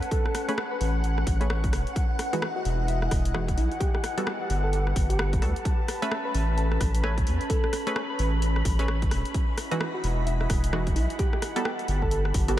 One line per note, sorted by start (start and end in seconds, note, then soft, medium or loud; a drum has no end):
0.00 0.45 A3 loud
0.00 0.45 C#4 medium
0.00 2.53 C#4 medium
0.00 0.45 B4 loud
0.00 2.58 B4 medium
0.00 5.66 F#5 medium
0.00 0.45 G#5 medium
0.00 1.73 A5 medium
0.00 closed hi-hat soft
0.11 0.46 A4 medium
0.11 kick loud
0.11 closed hi-hat medium
0.26 cross-stick medium
0.35 cross-stick medium
0.35 open hi-hat loud
0.48 0.62 A3 medium
0.48 0.62 C#4 medium
0.48 0.62 G#4 medium
0.48 0.62 B4 loud
0.48 0.57 C#5 medium
0.48 closed hi-hat medium
0.58 cross-stick loud
0.71 0.77 B4 medium
0.81 1.24 A1 medium
0.81 0.90 B4 medium
0.81 open hi-hat medium
1.04 closed hi-hat medium
1.18 cross-stick medium
1.27 1.74 A1 loud
1.27 kick loud
1.27 open hi-hat loud
1.41 1.48 A3 loud
1.41 1.48 C#4 medium
1.41 1.48 G#4 medium
1.41 1.48 B4 loud
1.41 1.47 C#5 medium
1.41 closed hi-hat medium
1.50 1.59 C#5 medium
1.50 cross-stick loud
1.64 kick loud
1.64 closed hi-hat medium
1.73 1.84 E1 medium
1.73 4.56 E4 medium
1.73 cross-stick medium
1.73 open hi-hat medium
1.87 closed hi-hat soft
1.95 6.35 F#5 medium
1.95 kick loud
1.95 closed hi-hat medium
2.06 3.81 D#5 medium
2.19 cross-stick medium
2.19 open hi-hat loud
2.33 2.47 E3 medium
2.33 2.47 G#3 medium
2.33 2.47 D#4 medium
2.33 2.47 F#4 loud
2.33 2.42 B4 medium
2.33 closed hi-hat medium
2.42 cross-stick loud
2.56 2.65 F#4 medium
2.65 3.09 E1 loud
2.65 3.81 G#5 medium
2.65 open hi-hat medium
2.88 2.97 E4 medium
2.88 closed hi-hat medium
3.02 3.08 E4 medium
3.02 cross-stick medium
3.11 3.59 E1 loud
3.11 kick loud
3.11 cross-stick medium
3.11 open hi-hat loud
3.25 closed hi-hat medium
3.34 3.79 E3 loud
3.34 3.79 G#3 medium
3.34 3.79 D#4 medium
3.34 3.79 F#4 loud
3.34 cross-stick loud
3.48 kick loud
3.48 closed hi-hat medium
3.57 3.69 B1 medium
3.57 3.71 E4 medium
3.57 open hi-hat medium
3.72 closed hi-hat soft
3.80 3.89 G4 medium
3.80 5.65 G4 medium
3.80 kick loud
3.80 closed hi-hat medium
3.87 9.78 B4 medium
3.94 4.00 G4 medium
3.94 cross-stick medium
4.04 cross-stick medium
4.04 open hi-hat loud
4.17 4.31 G3 medium
4.17 4.31 B3 medium
4.17 4.31 F#4 medium
4.17 4.31 A4 loud
4.17 closed hi-hat medium
4.26 4.40 G4 medium
4.26 cross-stick loud
4.50 4.93 G1 loud
4.50 open hi-hat medium
4.55 9.11 A5 medium
4.64 4.70 A4 medium
4.73 4.82 A4 medium
4.73 closed hi-hat medium
4.87 cross-stick medium
4.96 5.43 G1 loud
4.96 kick loud
4.96 open hi-hat loud
5.10 5.56 G4 loud
5.10 closed hi-hat medium
5.19 cross-stick loud
5.33 kick loud
5.33 closed hi-hat medium
5.42 5.54 D2 medium
5.42 5.54 G3 medium
5.42 5.54 B3 medium
5.42 5.54 F#4 medium
5.42 5.54 A4 medium
5.42 cross-stick medium
5.42 open hi-hat medium
5.56 closed hi-hat soft
5.65 9.96 C#4 medium
5.65 12.59 B5 medium
5.65 kick loud
5.65 closed hi-hat medium
5.88 cross-stick medium
5.88 open hi-hat loud
6.02 6.16 A3 loud
6.02 6.16 C#4 medium
6.02 6.16 G#4 medium
6.02 6.16 B4 loud
6.02 6.11 E5 medium
6.02 closed hi-hat medium
6.11 cross-stick loud
6.25 6.34 B4 medium
6.34 6.78 A1 loud
6.34 open hi-hat medium
6.57 6.66 A4 medium
6.57 closed hi-hat medium
6.72 6.77 A4 medium
6.72 cross-stick medium
6.81 7.28 A1 loud
6.81 kick loud
6.81 cross-stick medium
6.81 open hi-hat loud
6.95 closed hi-hat medium
7.04 7.84 A3 loud
7.04 7.84 C#4 medium
7.04 7.83 B4 loud
7.04 7.83 G#5 medium
7.04 cross-stick loud
7.18 kick loud
7.18 closed hi-hat medium
7.27 7.38 E2 medium
7.27 open hi-hat medium
7.41 closed hi-hat soft
7.50 7.84 A4 medium
7.50 kick loud
7.50 closed hi-hat medium
7.64 cross-stick medium
7.73 cross-stick medium
7.73 open hi-hat loud
7.87 8.01 A3 medium
7.87 8.01 C#4 medium
7.87 8.01 G#4 medium
7.87 8.01 B4 loud
7.87 7.95 C#5 medium
7.87 closed hi-hat medium
7.96 cross-stick loud
8.10 8.16 B4 medium
8.19 8.63 A1 loud
8.19 8.28 B4 medium
8.19 open hi-hat medium
8.42 closed hi-hat medium
8.56 cross-stick medium
8.65 9.13 A1 loud
8.65 kick loud
8.65 open hi-hat loud
8.79 8.87 A3 loud
8.79 8.87 C#4 medium
8.79 8.87 G#4 medium
8.79 8.87 B4 loud
8.79 8.85 C#5 medium
8.79 closed hi-hat medium
8.88 8.97 C#5 medium
8.88 cross-stick loud
9.02 kick loud
9.02 closed hi-hat medium
9.11 9.23 E1 medium
9.11 11.94 E4 medium
9.11 cross-stick medium
9.11 open hi-hat medium
9.25 11.19 D#5 medium
9.25 closed hi-hat soft
9.31 12.59 F#5 medium
9.31 kick loud
9.31 closed hi-hat medium
9.58 cross-stick medium
9.58 open hi-hat loud
9.71 9.85 E3 medium
9.71 9.85 G#3 medium
9.71 9.85 D#4 medium
9.71 9.85 F#4 loud
9.71 9.80 B4 medium
9.71 closed hi-hat medium
9.81 cross-stick loud
9.94 10.03 F#4 medium
10.04 10.47 E1 loud
10.04 11.19 G#5 medium
10.04 open hi-hat loud
10.27 10.36 E4 medium
10.27 closed hi-hat medium
10.41 10.46 E4 medium
10.41 cross-stick medium
10.50 10.97 E1 loud
10.50 kick loud
10.50 cross-stick medium
10.50 open hi-hat loud
10.64 closed hi-hat medium
10.73 11.18 E3 loud
10.73 11.18 G#3 medium
10.73 11.18 D#4 medium
10.73 11.18 F#4 loud
10.73 cross-stick loud
10.87 kick loud
10.87 closed hi-hat medium
10.96 11.07 B1 medium
10.96 11.09 E4 medium
10.96 open hi-hat loud
11.10 closed hi-hat soft
11.19 11.28 G4 medium
11.19 12.59 G4 medium
11.19 kick loud
11.19 closed hi-hat medium
11.33 11.39 G4 medium
11.33 12.59 B4 medium
11.33 cross-stick medium
11.42 cross-stick medium
11.42 open hi-hat loud
11.56 11.70 G3 medium
11.56 11.70 B3 medium
11.56 11.70 F#4 medium
11.56 11.70 A4 loud
11.56 closed hi-hat medium
11.65 11.78 G4 loud
11.65 cross-stick loud
11.79 closed hi-hat soft
11.88 12.32 G1 loud
11.88 12.59 A5 medium
11.88 open hi-hat loud
12.02 12.08 A4 medium
12.02 kick medium
12.11 12.20 A4 medium
12.11 closed hi-hat medium
12.25 cross-stick medium
12.34 12.59 G1 loud
12.34 kick loud
12.34 open hi-hat loud
12.48 12.56 G3 medium
12.48 12.56 B3 medium
12.48 12.56 F#4 medium
12.48 12.59 G4 loud
12.48 12.56 A4 loud
12.48 closed hi-hat medium